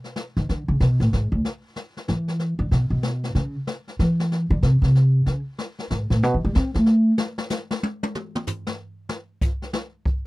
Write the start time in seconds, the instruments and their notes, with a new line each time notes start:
0.04 snare
0.16 snare
0.37 upright bass D#3, snare
0.49 upright bass D3, brush sweep, snare
0.68 upright bass C#3
0.80 upright bass B2, snare
1.00 upright bass A2, snare
1.13 upright bass G#2, snare
1.32 upright bass D2
1.45 brush sweep, snare
1.76 snare
1.97 snare
2.08 upright bass E3, snare
2.28 snare
2.39 brush sweep, snare
2.59 upright bass D3
2.71 upright bass B2, snare
2.90 upright bass B2
3.03 snare
3.24 snare
3.35 upright bass C#3, brush sweep, snare
3.67 snare
3.88 snare
3.99 upright bass E3, snare
4.20 snare
4.32 brush sweep, snare
4.51 upright bass D3
4.63 upright bass C3, snare
4.82 upright bass C3, snare
4.95 snare
5.26 upright bass C#3, brush sweep, snare
5.58 snare
5.79 snare
5.90 upright bass G#2, snare
6.10 upright bass A2, snare
6.23 upright bass B2, brush sweep, snare
6.34 upright bass D#3
6.45 upright bass G3
6.55 upright bass C4, snare
6.74 upright bass A3, snare
6.86 snare
7.18 snare
7.38 snare
7.50 snare, hi-hat pedal
7.71 snare
7.83 high tom
8.03 high tom
8.15 mid tom
8.35 mid tom
8.47 floor tom, hi-hat pedal
8.67 snare
9.09 snare
9.41 kick, hi-hat pedal
9.62 snare
9.73 snare
10.05 kick